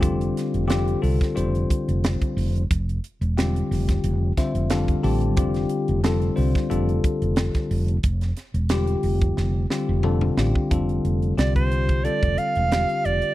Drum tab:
HH |xxxxxxoxxxxxxxox|xxxxxxoxx-xxxxox|xxxxxxoxxxxxxxox|xxxxxxox--------|
SD |--o-o--o----o---|----o-oo--o-o---|-o--o--o----oo--|-oo-o---o-o---o-|
T2 |----------------|----------------|----------------|------------oo--|
BD |o------o--o--o--|o------o--o--o--|o------o--o--o--|o------o-------o|

HH |xxxxxxxxxxxxxxxx|
SD |----o-------o---|
T2 |----------------|
BD |o----o-o-o------|